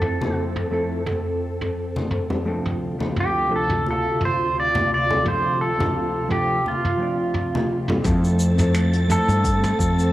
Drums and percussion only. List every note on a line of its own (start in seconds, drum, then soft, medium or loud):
0.01 mid tom medium
0.21 high conga medium
0.56 mid tom medium
1.06 mid tom medium
1.06 high conga soft
1.61 mid tom medium
1.96 high conga medium
2.11 mid tom medium
2.30 low conga medium
2.66 mid tom medium
3.00 high conga medium
3.16 mid tom medium
3.70 mid tom medium
3.86 high conga medium
4.21 mid tom medium
4.75 mid tom medium
4.75 high conga medium
5.11 low conga medium
5.25 mid tom medium
5.80 mid tom medium
5.80 high conga medium
6.30 mid tom medium
6.66 high conga medium
6.85 mid tom medium
7.34 mid tom medium
7.55 high conga medium
7.88 mid tom medium
7.88 low conga medium
8.04 kick loud
8.04 closed hi-hat medium
8.04 mid tom medium
8.04 shaker medium
8.24 shaker soft
8.39 shaker medium
8.58 closed hi-hat soft
8.58 mid tom medium
8.58 shaker medium
8.74 finger snap loud
8.74 closed hi-hat medium
8.74 shaker medium
8.93 closed hi-hat medium
9.10 mid tom medium
9.10 shaker medium
9.29 closed hi-hat medium
9.29 shaker medium
9.44 kick loud
9.44 closed hi-hat medium
9.44 shaker medium
9.64 mid tom medium
9.64 shaker soft
9.79 kick medium
9.79 shaker medium
9.99 closed hi-hat medium
9.99 shaker medium